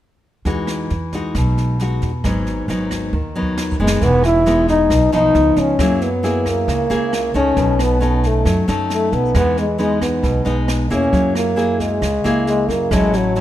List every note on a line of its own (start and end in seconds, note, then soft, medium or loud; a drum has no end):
0.45 0.87 E2 medium
0.45 1.33 E3 medium
0.45 0.91 G#3 medium
0.45 0.91 D#4 medium
0.45 0.91 F#4 medium
0.45 kick medium
0.45 snare soft
0.67 cross-stick medium
0.67 snare soft
0.90 1.32 E2 medium
0.90 snare soft
1.12 1.77 G#3 soft
1.12 1.77 D#4 medium
1.12 1.77 F#4 medium
1.12 kick soft
1.12 snare soft
1.35 1.98 B1 medium
1.35 2.23 B2 medium
1.35 kick medium
1.35 cross-stick medium
1.35 snare soft
1.57 snare soft
1.79 2.10 G#3 soft
1.79 2.11 D#4 soft
1.79 2.11 F#4 soft
1.79 snare soft
2.02 2.23 E2 medium
2.02 kick soft
2.02 snare soft
2.24 2.65 G#1 medium
2.24 3.11 G#2 medium
2.24 2.65 F#3 soft
2.24 2.66 B3 medium
2.24 2.66 D#4 medium
2.24 kick medium
2.24 cross-stick medium
2.24 snare soft
2.47 snare soft
2.68 3.10 G#1 medium
2.68 3.13 F#3 medium
2.68 3.13 B3 medium
2.68 3.13 D#4 medium
2.68 snare soft
2.91 kick soft
2.91 cross-stick medium
2.91 snare soft
3.13 3.76 D#2 medium
3.13 4.00 D#3 medium
3.13 kick medium
3.36 3.76 F#3 medium
3.36 3.77 B3 medium
3.36 3.77 D#4 medium
3.42 kick soft
3.57 snare soft
3.72 kick medium
3.80 4.00 F#1 medium
3.80 4.45 G#3 medium
3.80 4.05 G#3 medium
3.80 4.45 B3 medium
3.80 4.45 D#4 medium
3.87 snare medium
4.01 4.87 E1 medium
4.01 4.88 E3 medium
4.01 4.25 B3 loud
4.01 kick medium
4.01 snare soft
4.24 4.66 E4 loud
4.24 cross-stick medium
4.24 snare soft
4.46 4.90 G#3 medium
4.46 4.91 B3 medium
4.46 4.91 D#4 medium
4.46 snare soft
4.68 5.11 D#4 loud
4.68 kick soft
4.68 snare soft
4.90 5.11 B1 medium
4.90 5.33 B2 medium
4.90 kick medium
4.90 cross-stick medium
4.90 snare soft
5.12 5.34 B1 medium
5.12 5.76 F3 medium
5.12 5.76 B3 medium
5.12 5.76 D#4 medium
5.12 5.61 D#4 loud
5.12 snare soft
5.35 5.56 C#2 loud
5.35 snare soft
5.56 5.78 C#2 medium
5.56 6.05 C#4 medium
5.56 kick soft
5.56 snare soft
5.79 6.64 F#2 loud
5.79 6.66 F#3 medium
5.79 6.08 A#3 medium
5.79 6.08 E4 medium
5.79 6.08 G#4 medium
5.79 kick medium
5.79 cross-stick medium
5.79 snare soft
6.01 6.50 B3 medium
6.01 snare soft
6.23 6.87 A#3 medium
6.23 6.87 E4 medium
6.23 6.87 G#4 medium
6.23 snare soft
6.46 7.36 A#3 medium
6.46 kick soft
6.46 cross-stick medium
6.46 snare soft
6.68 6.89 C#2 medium
6.68 7.55 C#3 medium
6.68 kick medium
6.68 snare soft
6.90 7.32 C#2 medium
6.90 7.31 A#3 medium
6.90 7.31 E4 medium
6.90 7.32 G#4 medium
6.90 snare soft
7.13 cross-stick medium
7.13 snare soft
7.34 7.56 C#2 medium
7.34 7.98 A3 medium
7.34 7.98 C#4 medium
7.34 7.83 C#4 loud
7.34 7.98 D#4 medium
7.34 kick soft
7.34 snare soft
7.57 8.42 B1 medium
7.57 8.44 B2 medium
7.57 kick medium
7.57 snare soft
7.79 8.28 B3 medium
7.79 cross-stick medium
7.79 snare soft
8.00 8.64 A3 medium
8.00 8.64 C#4 medium
8.00 8.65 D#4 medium
8.00 snare soft
8.23 8.65 A3 medium
8.23 kick soft
8.23 snare soft
8.45 8.66 F#2 medium
8.45 9.33 F#3 medium
8.45 kick medium
8.45 cross-stick medium
8.45 snare soft
8.68 9.10 F#2 medium
8.68 9.31 A3 medium
8.68 9.32 C#4 medium
8.68 9.32 D#4 medium
8.68 snare soft
8.90 9.16 A3 medium
8.90 snare soft
9.12 9.33 B1 medium
9.12 9.36 B3 medium
9.12 kick soft
9.12 snare soft
9.35 10.20 E2 loud
9.35 10.22 E3 medium
9.35 9.64 G#3 medium
9.35 9.64 B3 soft
9.35 9.57 B3 loud
9.35 9.64 D#4 medium
9.35 kick medium
9.35 cross-stick medium
9.35 snare soft
9.57 9.79 G#3 medium
9.57 snare soft
9.78 10.42 G#3 medium
9.78 10.01 G#3 medium
9.78 10.43 B3 medium
9.78 10.43 D#4 medium
9.78 snare soft
10.01 10.65 B3 medium
10.01 kick soft
10.01 cross-stick medium
10.01 snare soft
10.23 10.45 B1 medium
10.23 11.10 B2 medium
10.23 kick medium
10.23 snare soft
10.45 10.88 B1 medium
10.45 10.87 G#3 medium
10.45 10.87 B3 medium
10.45 10.87 D#4 medium
10.45 snare soft
10.68 cross-stick medium
10.68 snare soft
10.90 11.11 E2 medium
10.90 11.54 A#3 medium
10.90 11.33 C#4 medium
10.90 11.54 E4 medium
10.90 11.54 G#4 medium
10.90 kick soft
10.90 snare soft
11.12 11.98 F#2 medium
11.12 11.99 F#3 medium
11.12 kick medium
11.12 snare soft
11.35 11.82 A#3 medium
11.35 cross-stick medium
11.35 snare soft
11.56 12.01 A#3 medium
11.56 12.01 E4 medium
11.56 12.02 G#4 medium
11.56 snare soft
11.80 12.47 G#3 medium
11.80 kick soft
11.80 snare soft
12.02 12.23 C#2 loud
12.02 12.89 C#3 medium
12.02 kick medium
12.02 cross-stick medium
12.02 snare soft
12.24 12.66 C#2 medium
12.24 12.88 A#3 medium
12.24 12.88 E4 medium
12.24 12.88 G#4 medium
12.24 snare soft
12.47 12.72 G#3 medium
12.47 snare soft
12.69 12.89 F#2 medium
12.69 12.94 A#3 medium
12.69 kick soft
12.69 snare soft
12.91 13.41 A1 loud
12.91 13.41 A2 medium
12.91 13.32 F#3 medium
12.91 13.18 G#3 loud
12.91 13.33 C#4 medium
12.91 13.33 E4 medium
12.91 kick medium
12.91 cross-stick medium
12.91 snare soft
13.13 13.41 F#3 medium
13.13 snare soft
13.35 13.41 F#3 medium
13.35 13.41 C#4 medium
13.35 13.41 E4 medium
13.35 snare soft